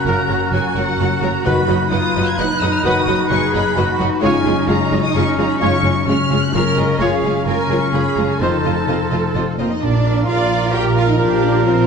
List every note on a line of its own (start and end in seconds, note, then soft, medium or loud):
0.00 0.36 C#3 soft
0.00 0.20 C#4 soft
0.00 1.41 C#4 soft
0.00 1.88 F#4 medium
0.00 0.68 A#4 soft
0.00 1.41 A#4 soft
0.00 1.41 F#6 soft
0.05 0.13 F#1 medium
0.05 1.45 F#2 soft
0.05 0.23 C#3 soft
0.05 0.15 F#3 soft
0.05 0.23 F#4 soft
0.05 0.15 F#4 soft
0.05 0.13 A#4 soft
0.05 0.23 A#4 soft
0.05 0.14 C#5 soft
0.05 0.52 A#5 medium
0.21 1.14 C#4 soft
0.29 0.37 F#1 soft
0.29 0.37 F#3 soft
0.29 0.38 F#4 soft
0.29 0.38 A#4 soft
0.29 0.39 C#5 soft
0.37 0.99 C#3 soft
0.52 0.60 F#1 soft
0.52 0.63 F#3 soft
0.52 0.63 F#4 soft
0.52 0.62 A#4 soft
0.52 0.61 C#5 soft
0.52 0.75 G#5 medium
0.69 1.48 A#4 soft
0.76 0.84 F#1 soft
0.76 0.86 F#3 soft
0.76 0.85 F#4 soft
0.76 0.84 A#4 soft
0.76 0.84 C#5 soft
0.76 1.23 F#5 medium
0.99 1.07 F#1 medium
0.99 1.29 C#3 soft
0.99 1.10 F#3 soft
0.99 1.10 F#4 soft
0.99 1.08 A#4 soft
0.99 1.08 C#5 soft
1.16 1.48 C#4 soft
1.22 1.30 F#1 soft
1.22 1.32 F#3 soft
1.22 1.31 F#4 soft
1.22 1.31 A#4 soft
1.22 1.31 C#5 soft
1.22 1.46 A#5 medium
1.31 1.48 C#3 soft
1.45 1.54 F#1 soft
1.45 2.11 F#2 medium
1.45 2.84 F#2 medium
1.45 1.62 D#3 medium
1.45 1.53 F#3 medium
1.45 4.19 D#4 medium
1.45 1.53 F#4 medium
1.45 1.62 F#4 medium
1.45 1.53 B4 soft
1.45 4.19 B4 medium
1.45 1.62 B4 medium
1.45 1.53 D#5 soft
1.45 1.91 B5 medium
1.45 3.97 F#6 soft
1.62 2.37 F#3 soft
1.67 1.76 F#1 soft
1.67 1.75 F#3 soft
1.67 1.75 F#4 soft
1.67 1.77 B4 soft
1.67 1.77 D#5 soft
1.78 2.53 D#4 soft
1.90 2.00 F#1 soft
1.90 1.98 F#3 soft
1.90 2.38 F4 medium
1.90 1.98 F#4 soft
1.90 2.00 B4 soft
1.90 2.00 D#5 soft
1.90 2.26 D#6 medium
2.09 3.46 B4 soft
2.15 2.23 F#1 soft
2.15 2.24 F#3 soft
2.15 2.25 F#4 soft
2.15 2.24 B4 soft
2.15 2.24 D#5 soft
2.24 3.30 F#4 soft
2.28 2.39 G#6 medium
2.38 2.46 F#1 medium
2.38 2.46 F#3 soft
2.38 2.68 F#3 soft
2.38 2.85 D#4 medium
2.38 2.46 F#4 soft
2.38 2.47 B4 soft
2.38 2.47 D#5 soft
2.38 2.62 F#6 medium
2.54 2.99 D#4 soft
2.61 2.69 F#1 medium
2.61 2.70 F#3 medium
2.61 2.69 F#4 soft
2.61 2.70 B4 soft
2.61 2.70 D#5 soft
2.61 2.73 D#6 medium
2.69 3.14 F#3 soft
2.74 2.85 F6 medium
2.83 2.93 F#1 medium
2.83 4.22 F#2 medium
2.83 2.99 D#3 medium
2.83 2.94 F#3 medium
2.83 3.00 F#4 medium
2.83 3.31 F#4 medium
2.83 2.93 F#4 medium
2.83 2.93 B4 medium
2.83 3.02 B4 medium
2.83 2.92 D#5 medium
2.83 3.30 D#6 medium
3.00 3.92 D#4 soft
3.07 3.15 F#1 medium
3.07 3.16 F#3 soft
3.07 3.16 F#4 medium
3.07 3.16 B4 soft
3.07 3.16 D#5 soft
3.16 3.77 F#3 soft
3.30 3.39 F#1 medium
3.30 3.38 F#3 medium
3.30 3.38 F#4 medium
3.30 3.61 F#4 medium
3.30 3.76 G#4 medium
3.30 3.40 B4 soft
3.30 3.39 D#5 soft
3.30 3.53 C#6 medium
3.47 4.25 B4 medium
3.53 3.63 F#1 medium
3.53 3.61 F#3 soft
3.53 3.62 F#4 soft
3.53 3.62 B4 medium
3.53 3.63 D#5 medium
3.53 3.99 B5 medium
3.62 4.25 F#4 soft
3.76 3.85 F#1 medium
3.76 3.85 F#3 medium
3.76 4.07 F#3 soft
3.76 3.85 F#4 soft
3.76 4.23 F#4 medium
3.76 3.84 B4 medium
3.76 3.84 D#5 medium
3.93 4.25 D#4 soft
3.98 4.09 F#1 medium
3.98 4.06 F#3 medium
3.98 4.07 F#4 medium
3.98 4.07 B4 medium
3.98 4.08 D#5 soft
4.08 4.25 F#3 soft
4.21 4.31 F#1 medium
4.21 5.60 F#2 medium
4.21 4.39 C#3 medium
4.21 4.29 G#3 medium
4.21 4.97 C#4 medium
4.21 6.08 D#4 medium
4.21 4.30 F4 medium
4.21 4.39 F4 medium
4.21 4.30 G#4 medium
4.21 4.30 C#5 medium
4.21 5.11 C#5 medium
4.21 4.40 C#5 medium
4.21 4.66 G#5 medium
4.21 5.10 F6 medium
4.39 5.13 C#3 soft
4.45 4.54 F#1 medium
4.45 4.53 G#3 soft
4.45 4.53 F4 medium
4.45 4.53 G#4 soft
4.45 4.53 C#5 medium
4.54 5.30 C#4 soft
4.67 4.76 F#1 medium
4.67 4.76 G#3 medium
4.67 4.75 F4 medium
4.67 4.98 F4 soft
4.67 4.77 G#4 medium
4.67 4.76 C#5 soft
4.67 5.03 A#5 medium
4.84 6.21 C#5 medium
4.92 5.00 F#1 medium
4.92 5.00 G#3 soft
4.92 5.00 F4 soft
4.92 5.00 G#4 medium
4.92 5.00 C#5 medium
4.99 6.06 F4 medium
5.04 5.15 D#6 medium
5.13 5.22 F#1 medium
5.13 5.45 C#3 soft
5.13 5.24 G#3 soft
5.13 5.60 C#4 medium
5.13 5.24 F4 soft
5.13 5.23 G#4 medium
5.13 5.59 C#5 soft
5.13 5.23 C#5 medium
5.13 5.38 C#6 medium
5.13 5.60 F6 medium
5.31 5.76 C#4 soft
5.37 5.46 F#1 medium
5.37 5.45 G#3 medium
5.37 5.45 F4 soft
5.37 5.46 G#4 medium
5.37 5.45 C#5 soft
5.37 5.49 A#5 medium
5.46 5.91 C#3 soft
5.51 5.62 B5 medium
5.59 5.70 F#1 medium
5.59 6.99 F#2 medium
5.59 5.76 C#3 medium
5.59 5.70 G#3 medium
5.59 6.07 C#4 medium
5.59 5.77 F4 medium
5.59 5.70 F4 medium
5.59 5.69 G#4 medium
5.59 6.05 C#5 medium
5.59 5.77 C#5 medium
5.59 5.70 C#5 medium
5.59 6.06 C#6 medium
5.59 6.06 F6 medium
5.77 6.68 C#4 soft
5.83 5.92 F#1 medium
5.83 5.91 G#3 soft
5.83 5.92 F4 soft
5.83 5.92 G#4 soft
5.83 5.92 C#5 soft
5.92 6.52 C#3 soft
6.06 6.14 F#1 medium
6.06 6.16 G#3 medium
6.06 6.53 C#4 medium
6.06 6.54 C#4 medium
6.06 6.37 F4 medium
6.06 6.16 F4 soft
6.06 6.16 G#4 soft
6.06 6.38 C#5 medium
6.06 6.17 C#5 soft
6.06 6.42 F6 medium
6.06 6.53 F6 medium
6.22 7.62 C#5 soft
6.30 6.38 F#1 medium
6.30 6.39 G#3 soft
6.30 6.38 F4 soft
6.30 6.39 G#4 soft
6.30 6.39 C#5 soft
6.38 7.46 F4 soft
6.43 6.54 F#6 medium
6.52 6.62 F#1 medium
6.52 6.84 C#3 soft
6.52 6.62 G#3 soft
6.52 7.00 C#4 medium
6.52 6.62 F4 soft
6.52 6.63 G#4 medium
6.52 7.00 A#4 medium
6.52 6.97 C#5 medium
6.52 6.62 C#5 medium
6.52 6.76 F6 medium
6.52 6.99 F6 medium
6.69 7.15 C#4 soft
6.76 6.85 F#1 medium
6.76 6.85 G#3 soft
6.76 6.86 F4 soft
6.76 6.85 G#4 soft
6.76 6.85 C#5 soft
6.76 7.00 D#5 medium
6.85 7.30 C#3 soft
6.98 7.08 F#1 medium
6.98 8.42 F#2 medium
6.98 7.17 C#3 medium
6.98 7.08 G#3 medium
6.98 7.46 C#4 soft
6.98 7.08 F4 medium
6.98 7.17 F4 medium
6.98 7.47 G#4 medium
6.98 7.09 G#4 medium
6.98 7.45 C#5 soft
6.98 7.17 C#5 medium
6.98 7.09 C#5 medium
6.98 7.46 F5 medium
6.98 7.46 F6 medium
7.16 8.08 C#4 soft
7.23 7.31 F#1 soft
7.23 7.32 G#3 soft
7.23 7.32 F4 soft
7.23 7.33 G#4 soft
7.23 7.33 C#5 soft
7.31 7.92 C#3 soft
7.45 7.55 F#1 soft
7.45 7.56 G#3 soft
7.45 8.43 C#4 medium
7.45 7.77 F4 soft
7.45 7.56 F4 soft
7.45 7.55 G#4 soft
7.45 7.92 A#4 medium
7.45 8.38 C#5 medium
7.45 7.56 C#5 soft
7.45 7.81 G#5 medium
7.45 8.38 F6 medium
7.63 8.43 C#5 soft
7.69 7.77 F#1 soft
7.69 7.78 G#3 soft
7.69 7.79 F4 soft
7.69 7.78 G#4 soft
7.69 7.79 C#5 soft
7.79 8.87 F4 soft
7.79 7.94 C#6 medium
7.93 8.01 F#1 soft
7.93 8.24 C#3 soft
7.93 8.02 G#3 soft
7.93 8.02 F4 soft
7.93 8.39 G#4 medium
7.93 8.03 G#4 soft
7.93 8.02 C#5 soft
7.93 8.17 B5 medium
8.09 8.42 C#4 soft
8.16 8.25 F#1 soft
8.16 8.25 G#3 soft
8.16 8.25 F4 soft
8.16 8.25 G#4 soft
8.16 8.26 C#5 soft
8.16 8.28 A#5 medium
8.25 8.42 C#3 soft
8.30 8.41 G#5 medium
8.39 8.48 F1 soft
8.39 9.84 F2 soft
8.39 8.57 D#3 soft
8.39 8.49 C4 soft
8.39 9.59 D#4 soft
8.39 8.57 F4 soft
8.39 8.49 F4 soft
8.39 8.50 F4 soft
8.39 9.56 A4 medium
8.39 9.55 C5 soft
8.39 8.58 C5 soft
8.39 8.50 D#5 soft
8.39 9.35 A5 medium
8.39 9.57 F6 soft
8.57 9.34 C3 soft
8.64 8.72 F1 soft
8.64 8.73 C4 soft
8.64 8.73 F4 soft
8.64 8.73 D#5 soft
8.72 9.49 D#4 soft
8.87 8.96 F1 soft
8.87 8.97 C4 soft
8.87 8.95 F4 soft
8.87 9.19 F4 soft
8.87 8.97 F4 soft
8.87 8.96 D#5 soft
9.04 10.04 F5 soft
9.11 9.20 F1 soft
9.11 9.20 C4 soft
9.11 9.19 F4 soft
9.11 9.20 F4 soft
9.11 9.20 D#5 soft
9.20 10.85 F4 soft
9.34 9.43 F1 soft
9.34 9.65 C3 soft
9.34 9.45 C4 soft
9.34 9.42 F4 soft
9.34 9.45 F4 soft
9.34 9.42 D#5 soft
9.50 9.84 D#4 soft
9.58 9.66 F1 soft
9.58 9.69 A#3 medium
9.58 9.68 C4 soft
9.58 9.67 F4 soft
9.58 9.68 F4 soft
9.58 9.70 A#4 soft
9.58 9.66 D#5 soft
9.66 9.84 C3 soft
9.71 9.83 D#4 medium
9.71 9.82 D#5 soft
9.81 10.23 A#1 medium
9.81 11.19 A#2 medium
9.81 11.87 F3 medium
9.81 10.29 D4 medium
9.81 11.87 F4 medium
9.81 11.87 A#4 medium
9.81 9.91 A#4 medium
9.81 10.29 D5 medium
9.94 10.97 A#3 soft
10.05 10.14 A#4 soft
10.05 10.28 F5 soft
10.17 10.62 A#4 soft
10.28 10.69 A#1 medium
10.28 10.74 F4 medium
10.28 10.36 A#4 soft
10.28 10.72 D5 medium
10.28 10.74 F5 medium
10.51 10.59 A#4 soft
10.63 11.53 A#4 soft
10.73 11.15 A#1 medium
10.73 10.97 G4 medium
10.73 10.81 A#4 medium
10.73 11.20 A#4 medium
10.73 11.41 F5 soft
10.73 10.82 G5 medium
10.97 11.30 A#3 soft
10.97 11.09 F4 medium
10.97 11.05 A#4 soft
10.97 11.08 F5 medium
11.08 11.87 F3 soft
11.08 11.21 D#4 medium
11.08 11.20 D#5 medium
11.20 11.61 A#1 medium
11.20 11.87 A#2 medium
11.20 11.66 D4 medium
11.20 11.67 G4 medium
11.20 11.28 A#4 medium
11.20 11.65 D5 medium
11.32 11.87 A#3 soft
11.43 11.51 A#4 soft
11.65 11.87 A#1 medium
11.65 11.87 C4 medium
11.65 11.87 F4 medium
11.65 11.75 A#4 soft
11.65 11.87 C5 medium
11.65 11.87 F5 medium
11.78 11.87 F6 medium